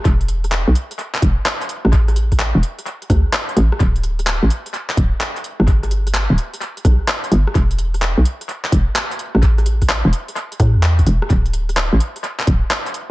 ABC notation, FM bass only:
X:1
M:4/4
L:1/16
Q:"Swing 16ths" 1/4=128
K:Ephr
V:1 name="FM bass" clef=bass
E,,,4- E,,, B,,, z4 E,,, z4 A,,,- | A,,,4- A,,, E,,, z4 D,, z3 A,,, z | D,,,4- D,,, A,,, z4 D,,, z4 G,,,- | G,,,4- G,,, D,,, z4 B,,, z3 G,,, z |
E,,,4- E,,, B,,, z4 E,,, z4 A,,,- | A,,,4- A,,, E,,, z4 A,, E,,3 E,,, z | D,,,4- D,,, A,,, z4 D,,, z4 z |]